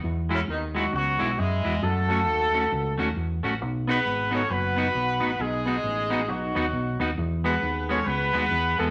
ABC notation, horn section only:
X:1
M:4/4
L:1/8
Q:"Swing" 1/4=134
K:Bmix
V:1 name="Horn section"
z [C,A,C] [D,B,D] [F,DF] [F,B,F]2 [G,EG]2 | [A,FA]6 z2 | z [B,GB]2 [CAc] [B,FB]4 | [G,DG]4 [F,DF]3 z |
z [B,GB]2 [CAc] [B,GB]3 [A,FA] |]